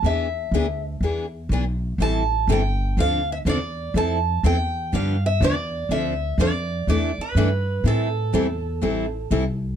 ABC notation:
X:1
M:4/4
L:1/8
Q:"Swing" 1/4=123
K:Am
V:1 name="Steel-string acoustic guitar"
e3 z4 z | a2 g2 f e d2 | a2 g2 f e d2 | e2 d2 d B3 |
A6 z2 |]
V:2 name="Steel-string acoustic guitar"
[E,B,D^G] z [E,B,DG] z [E,B,DG] z [E,B,DG] z | [E,G,CEA] z [E,G,CEA] z [D,F,CDA] z [D,F,CDA] z | [F,CEA] z [F,CEA] z [D,F,B,DG] z [D,F,B,DG] z | [D,F,CDA] z [D,F,CDA] z [E,A,DEA] z [E,A,DEA] z |
[E,G,CEA] z [E,G,CEA] z [E,G,CEA] z [E,G,CEA] z |]
V:3 name="Steel-string acoustic guitar"
z8 | [E,G,CEA] z [E,G,CEA] z [D,F,CDA] z [D,F,CDA] z | [F,CEA] z [F,CEA] z [D,F,B,DG] z [D,F,B,DG] z | [D,F,CDA] z [D,F,CDA] z [E,A,DEA] z [E,A,DEA] z |
[E,G,CEA] z [E,G,CEA] z [E,G,CEA] z [E,G,CEA] z |]
V:4 name="Upright bass" clef=bass
E,,2 D,,2 E,,2 B,,,2 | A,,,2 G,,,2 D,,2 E,,2 | F,,2 E,,2 G,,2 E,,2 | D,,2 F,,2 E,, z G,,2 |
A,,2 E,,2 A,,,2 C,,2 |]